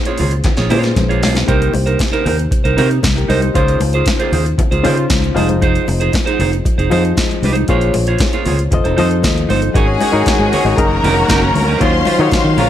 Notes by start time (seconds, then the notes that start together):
Already playing: A#2 A#3 C#4 G#4 C5
0.05 F4 G#4 C#5, closed hi-hat
0.18 C#2 F4 G#4 C#5, open hi-hat, low conga
0.31 muted clean electric guitar stroke, closed hi-hat
0.44 muted clean electric guitar stroke, kick, snare, closed hi-hat, muted conga, low conga
0.57 A#1 F4 G#4 C#5, snare, closed hi-hat
0.70 A#2 A#3 C#4 F4 G#4 B4 C#5, open hi-hat, muted conga, low conga
0.78 C5
0.83 muted clean electric guitar stroke, snare, closed hi-hat
0.96 A#1, muted clean electric guitar stroke, kick, snare, closed hi-hat, high conga
1.09 F4 G#4 C#5, closed hi-hat
1.22 B1 F4 G#4 C#5, snare, open hi-hat, high conga
1.35 muted clean electric guitar stroke, snare, closed hi-hat, high conga
1.47 C2 C3 A#3 D#4 G4 A#4 C5, kick, closed hi-hat
1.62 closed hi-hat
1.73 C2, muted clean electric guitar stroke, open hi-hat, muted conga
1.86 D#4 A#4 C5, closed hi-hat
1.99 kick, snare, closed hi-hat, high conga
2.12 D#4 A#4 C5, closed hi-hat
2.25 D#2 D#4 A#4 C5, open hi-hat, low conga
2.38 muted clean electric guitar stroke, closed hi-hat
2.51 muted clean electric guitar stroke, kick, closed hi-hat
2.64 C2 D#4 A#4 C5, closed hi-hat
2.77 C3 D#4 A#4 C5, open hi-hat, muted conga, low conga
2.90 muted clean electric guitar stroke, closed hi-hat
3.03 C2, muted clean electric guitar stroke, kick, snare, closed hi-hat, high conga
3.16 G4 A#4, muted clean electric guitar stroke, closed hi-hat
3.29 C2 D#4 A#4 C5 D#5, open hi-hat, high conga
3.42 C5, muted clean electric guitar stroke, closed hi-hat, high conga
3.54 C#2 C#3 C#4 D#4 F4 G#4 C5, kick, closed hi-hat
3.68 closed hi-hat
3.80 C#2, muted clean electric guitar stroke, open hi-hat, muted conga
3.93 F4 G#4 C5, closed hi-hat
4.06 kick, snare, closed hi-hat, high conga
4.19 F4 G#4 C5, closed hi-hat
4.32 D#2 F4 G#4 C5, open hi-hat, low conga
4.45 muted clean electric guitar stroke, closed hi-hat
4.58 muted clean electric guitar stroke, kick, closed hi-hat, low conga
4.71 C#2 F4 G#4 C5, closed hi-hat
4.83 C#3 C#4 D#4 F4 G#4 C5, open hi-hat, muted conga, low conga
4.97 muted clean electric guitar stroke, closed hi-hat
5.10 C#2, muted clean electric guitar stroke, kick, snare, closed hi-hat, high conga
5.23 muted clean electric guitar stroke, closed hi-hat
5.35 F1 F3 D#4 F4 G#4 C5 D#5, open hi-hat, high conga
5.49 muted clean electric guitar stroke, closed hi-hat, high conga
5.62 D#4 G#4 C5, kick, closed hi-hat
5.75 closed hi-hat
5.88 F1, muted clean electric guitar stroke, open hi-hat, muted conga
6.00 D#4 G#4 C5, closed hi-hat
6.13 muted clean electric guitar stroke, kick, snare, closed hi-hat, high conga
6.26 D#4 G#4 C5, closed hi-hat
6.39 F1 D#4 G#4 C5, open hi-hat, low conga
6.52 muted clean electric guitar stroke, closed hi-hat
6.65 muted clean electric guitar stroke, kick, closed hi-hat, muted conga
6.78 F1 D#4 G#4 C5, closed hi-hat
6.90 F2 F3 D#4 F4 G#4 C5 D#5, open hi-hat, muted conga, low conga
7.05 muted clean electric guitar stroke, closed hi-hat
7.17 muted clean electric guitar stroke, kick, snare, closed hi-hat, high conga
7.31 muted clean electric guitar stroke, closed hi-hat
7.42 C2 D#4 G#4 C5, open hi-hat, high conga
7.55 muted clean electric guitar stroke, closed hi-hat, high conga
7.68 A#1 A#3 F4 G#4 C5 C#5, kick, closed hi-hat
7.81 closed hi-hat
7.94 A#1, open hi-hat, muted conga
8.07 F4 G#4 C#5, closed hi-hat
8.19 muted clean electric guitar stroke, kick, snare, closed hi-hat, high conga
8.33 F4 G#4 C#5, closed hi-hat
8.45 C#2 F4 G#4 C#5, open hi-hat, low conga
8.58 muted clean electric guitar stroke, closed hi-hat
8.71 F1 F3 F4 A4 C5 D#5, muted clean electric guitar stroke, kick, closed hi-hat, muted conga, low conga
8.84 F1 D#4 A4 C5, closed hi-hat
8.97 F2 F3 D#4 F4 A4 C5 D#5, open hi-hat, muted conga, low conga
9.10 muted clean electric guitar stroke, closed hi-hat
9.23 D#2 D#5, muted clean electric guitar stroke, kick, snare, closed hi-hat, high conga
9.35 muted clean electric guitar stroke, closed hi-hat
9.49 G1 D#4 A4 C5, open hi-hat, high conga
9.62 muted clean electric guitar stroke, closed hi-hat
9.74 G#1 D#3 G#3 C#4 D#4 F#4 G#4 A#4 C#5 G#5, kick, closed hi-hat
9.88 muted clean electric guitar stroke
10.00 F#4 G#4 C#5, open hi-hat, muted conga
10.12 G#2 G#3 D#4 F#4 G#4 A#4 C#5
10.26 muted fingered electric bass stroke, kick, snare, closed hi-hat, high conga
10.39 G#2, muted clean electric guitar stroke
10.52 F#4 G#4 C#5, open hi-hat, low conga
10.65 G#1 G#3 D#4 F#4 A#4 C#5, muted clean electric guitar stroke
10.77 F#1 D#3 F#3 A#3 C#4 D#4 F#4 G#4 A#4 A#5, kick, closed hi-hat, muted conga
10.91 muted clean electric guitar stroke
11.03 F1 C#4 D#4 A#4, open hi-hat, muted conga, low conga
11.16 muted clean electric guitar stroke
11.28 F#1 C#4 D#4 A#4, kick, snare, closed hi-hat, high conga
11.42 muted clean electric guitar stroke
11.54 D2, muted clean electric guitar stroke, open hi-hat, high conga
11.67 C#4 D#4 A#4
11.80 D#2 D#3 F#3 C#4 D#4 F4 F#4 C5 C#5 F5 C6, kick, closed hi-hat
11.94 muted clean electric guitar stroke
12.05 F#3 C#4 F4, open hi-hat, muted conga
12.18 D#3 F#3 C#4 D#4 F4 F#4 C#5
12.32 kick, snare, closed hi-hat, high conga
12.44 D#3, muted clean electric guitar stroke
12.57 A#1 C#3 G#3 A#3 C#4 F4 G#4 A#4 C5 C#5 A#5, open hi-hat, low conga